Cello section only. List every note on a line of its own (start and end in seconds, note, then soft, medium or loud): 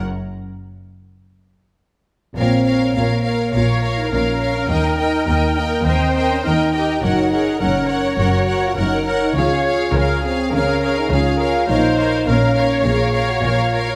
2.38 2.86 A#2 soft
2.96 3.45 A#2 soft
3.54 4.03 A#2 soft
4.12 4.61 A#2 soft
4.70 5.19 D#2 soft
5.28 5.77 D#2 soft
5.86 6.35 D#2 soft
6.45 6.94 D#2 soft
7.03 7.52 F#2 soft
7.61 8.10 F#2 soft
8.20 8.69 F#2 soft
8.78 9.27 F#2 soft
9.37 9.85 C#3 medium
9.95 10.43 C#3 medium
10.53 11.02 C#3 soft
11.12 11.60 C#3 medium
11.69 12.18 A#2 medium
12.28 12.77 A#2 medium
12.86 13.34 A#2 medium
13.43 13.92 A#2 medium